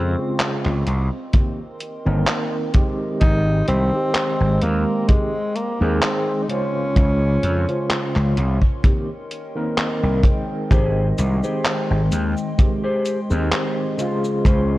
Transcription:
Already playing: slap bass F2, tine electric piano C#3 G#3 C4 F4, ambient pad C4 D#5 F5 C#6, tenor saxophone C4
0.18 tine electric piano C#3 G#3 C4 F4
0.40 clap, closed hi-hat
0.65 slap bass C#2, clap
0.86 slap bass C2, ambient pad A#4 D#5 G5 C6, closed hi-hat
1.33 tine electric piano D#3 A#3 C4 G4, kick, closed hi-hat
1.80 closed hi-hat
2.05 slap bass G1, tine electric piano D#3 A#3 C4 A#4
2.27 clap, closed hi-hat
2.73 tine electric piano D#3 G#3 C4 G4, kick, closed hi-hat
3.20 slap bass G#1, ambient pad G#3 G5 C6, tenor saxophone D#4, kick, closed hi-hat
3.68 slap bass C2, tenor saxophone C4, closed hi-hat
3.92 tine electric piano D#3 G#3 C4 G4
4.15 clap, closed hi-hat
4.41 slap bass G#1
4.62 slap bass D#2, tenor saxophone A#3, closed hi-hat
5.08 tine electric piano D#3 G#3 C4 G4, tenor saxophone G#3, kick, closed hi-hat
5.55 tenor saxophone A#3, closed hi-hat
5.80 slap bass D#2, tine electric piano D#3 G#3 C4 G#4
6.02 tenor saxophone C4, clap, closed hi-hat
6.43 tenor saxophone D#4
6.48 tine electric piano C#3 G#3 F4 C5, tenor saxophone C#4, closed hi-hat
6.96 slap bass C#2, ambient pad F5, kick, closed hi-hat
7.43 slap bass F2, closed hi-hat
7.68 tine electric piano C#3 G#3 F4 C5, closed hi-hat
7.90 clap, closed hi-hat
8.16 slap bass C#2, clap
8.37 slap bass C2, ambient pad A#4 D#5 G5, closed hi-hat
8.62 kick
8.83 tine electric piano D#3 A#3 C4 G4, kick, closed hi-hat
9.31 closed hi-hat
9.55 tine electric piano D#3 A#3 C4 A#4
9.78 clap, closed hi-hat
10.03 slap bass C2
10.23 tine electric piano D#3 G#3 C4 G5, kick, closed hi-hat
10.70 slap bass G#1, ambient pad G#3 G5 C6, clean electric guitar G4 G#4 C5, kick, closed hi-hat, cabasa
11.18 slap bass C2, closed hi-hat, cabasa
11.42 tine electric piano D#3 G#3 C4 G5, clean electric guitar G4 G#4 C5, cabasa
11.65 clap, closed hi-hat, cabasa
11.91 slap bass G#1
12.12 slap bass D#2, closed hi-hat, cabasa
12.37 cabasa
12.58 tine electric piano D#3 G#3 C4 G4, muted clean electric guitar stroke, kick, closed hi-hat, cabasa
12.84 clean electric guitar G4 G#4 C5
13.06 closed hi-hat, cabasa
13.30 slap bass D#2, tine electric piano D#3 G#3 C4, cabasa
13.52 clean electric guitar G4 G#4 C5, clap, closed hi-hat, cabasa
13.98 tine electric piano C#3 G#3 F4 C5, closed hi-hat, cabasa
14.25 cabasa
14.45 slap bass C#2, clean electric guitar C#4 F4 C5, ambient pad F5, kick, closed hi-hat, cabasa

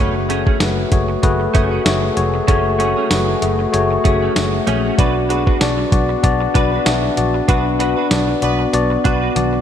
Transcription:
Already playing: clean electric guitar A3, tine electric piano A3 F#4
0.00 fingered electric bass F#1, analog synth pad A3 F#4 G#4, clean electric guitar C#4 G#4, tine electric piano G#4 C#5
0.29 tine electric piano A3 F#4 G#4 C#5, clean electric guitar A3 C#4 G#4, closed hi-hat
0.46 clean electric guitar A3 C#4 G#4, kick
0.60 fingered electric bass F#1, tine electric piano A3 F#4 G#4 B4, muted clean electric guitar stroke, snare, closed hi-hat, tambourine
0.77 muted clean electric guitar stroke
0.91 fingered electric bass F#1, tine electric piano A3 F#4 G#4 C#5, kick, closed hi-hat
1.09 muted clean electric guitar stroke
1.22 fingered electric bass F#1, tine electric piano A3 F#4 G#4 B4, muted clean electric guitar stroke, kick, closed hi-hat
1.40 muted clean electric guitar stroke
1.54 fingered electric bass F#1, clean electric guitar A3 C#4 G#4, tine electric piano A3 F#4 G#4 E5, kick, closed hi-hat
1.71 clean electric guitar A3 C#4 G#4
1.85 fingered electric bass F#1, tine electric piano A3 F#4 G#4 C#5, muted clean electric guitar stroke, snare, closed hi-hat, tambourine
2.02 muted clean electric guitar stroke
2.16 fingered electric bass F1, tine electric piano A3 F#4 G#4 C#5, closed hi-hat
2.34 muted clean electric guitar stroke
2.47 fingered electric bass F#1, clean electric guitar A3 C#4 G#4, tine electric piano A3 F#4 G#4 C#5, kick, closed hi-hat
2.79 clean electric guitar A3 C#4 G#4, tine electric piano A3 F#4 G#4 C#5, closed hi-hat
2.96 clean electric guitar A3 C#4 G#4
3.10 fingered electric bass F#1, tine electric piano A3 F#4 G#4 B4, snare, closed hi-hat, tambourine
3.28 muted clean electric guitar stroke
3.42 fingered electric bass F#1, tine electric piano A3 F#4 G#4 E5, closed hi-hat
3.59 muted clean electric guitar stroke
3.72 fingered electric bass F#1, tine electric piano A3 F#4 G#4 C#5, muted clean electric guitar stroke, closed hi-hat
3.91 muted clean electric guitar stroke
4.04 fingered electric bass F#1, tine electric piano A3 F#4 G#4 C#5, clean electric guitar A3 C#4 G#4, kick, closed hi-hat
4.21 clean electric guitar A3 C#4 G#4
4.35 fingered electric bass F#1, tine electric piano A3 F#4 G#4 E5, snare, closed hi-hat, tambourine
4.53 muted clean electric guitar stroke
4.66 fingered electric bass A#1, tine electric piano A3 F#4 G#4 C#5, clean electric guitar A3 C#4 G#4, closed hi-hat
4.84 clean electric guitar A3 C#4 G#4
4.98 fingered electric bass B1, tine electric piano B3 D4 F#4 D5, analog synth pad B3 D4, clean electric guitar D4 F#4 B4, kick, closed hi-hat
5.29 tine electric piano B3 D4 F#4 G#4, clean electric guitar D4 F#4 B4, closed hi-hat
5.46 clean electric guitar D4 F#4 B4, kick
5.61 fingered electric bass B1, tine electric piano B3 D4 F#4 D5, muted clean electric guitar stroke, snare, closed hi-hat, tambourine
5.78 muted clean electric guitar stroke
5.92 fingered electric bass B1, tine electric piano B3 D4 F#4 D5, kick, closed hi-hat
6.09 muted clean electric guitar stroke
6.23 fingered electric bass B1, tine electric piano B3 D4 F#4 D5, muted clean electric guitar stroke, kick, closed hi-hat
6.41 muted clean electric guitar stroke
6.54 fingered electric bass B1, tine electric piano B3 D4 F#4 D5, clean electric guitar D4 F#4 B4, kick, closed hi-hat
6.72 clean electric guitar D4 F#4 B4
6.86 fingered electric bass B1, tine electric piano B3 D4 F#4 E5, muted clean electric guitar stroke, snare, closed hi-hat, tambourine
7.03 muted clean electric guitar stroke
7.17 fingered electric bass A#1, tine electric piano B3 D4 F#4 D5, closed hi-hat
7.34 muted clean electric guitar stroke
7.48 fingered electric bass B1, tine electric piano B3 D4 F#4 B4, clean electric guitar D4 F#4 B4, kick, closed hi-hat
7.79 tine electric piano B3 D4 F#4 B4, clean electric guitar D4 F#4 B4, closed hi-hat
7.97 clean electric guitar D4 F#4 B4
8.11 fingered electric bass B1, tine electric piano B3 D4 F#4 D5, muted clean electric guitar stroke, snare, closed hi-hat, tambourine
8.28 muted clean electric guitar stroke
8.42 fingered electric bass B1, horn section F#3 B3 D4 B4, tine electric piano B3 D4 F#4 D5, closed hi-hat
8.59 muted clean electric guitar stroke
8.73 fingered electric bass B1, tine electric piano B3 D4 F#4 D5, muted clean electric guitar stroke, closed hi-hat
8.90 muted clean electric guitar stroke
9.04 fingered electric bass B1, tine electric piano B3 D4 F#4 D5, clean electric guitar D4 F#4 B4, kick, closed hi-hat
9.22 clean electric guitar D4 F#4 B4
9.35 fingered electric bass B1, tine electric piano B3 D4 F#4 D5, muted clean electric guitar stroke, closed hi-hat, high tom
9.53 muted clean electric guitar stroke

